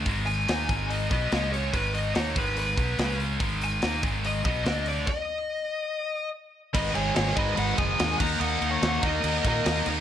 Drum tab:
CC |----------------|----------------|----------------|x---------------|
HH |o-o-o-o-o-o-o-o-|o-o-o-o-o-o-o-o-|o-o-o-o-o-o-o-o-|----------------|
SD |----o-------o---|----o-------o---|----o-------o---|----------------|
BD |o-----o---o-----|o-----o---o-----|o-----o---o-----|o---------------|

CC |x-x-x-x-x-x-x-x-|x-x-x-x-x-x-x-x-|
HH |----------------|----------------|
SD |----oo------o---|----oo------o---|
BD |o-----o---o---o-|------o---o-----|